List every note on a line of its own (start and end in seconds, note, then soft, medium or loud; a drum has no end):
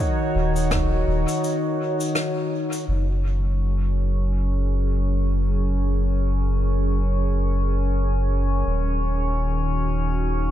0.00 2.88 D#3 medium
0.00 4.53 D#4 medium
0.00 4.83 F#4 medium
0.00 3.95 C#5 medium
0.35 1.04 D#1 medium
0.56 cabasa medium
0.71 kick loud
0.71 cross-stick medium
0.71 cabasa medium
1.07 1.26 D#1 loud
1.28 cabasa medium
1.44 cabasa medium
2.00 cabasa medium
2.15 cross-stick medium
2.15 cabasa medium
2.73 cabasa medium
2.88 8.63 F#1 medium
2.88 8.66 F#3 medium
2.88 10.51 C#4 medium
2.88 10.51 C#5 medium
3.11 10.51 G#4 medium
3.21 9.82 A#4 medium
3.46 9.71 C#4 medium
8.66 10.51 D#1 medium
8.66 10.51 D#3 medium
8.98 10.51 F#4 medium
9.05 10.51 D#4 medium
9.78 10.51 C#5 medium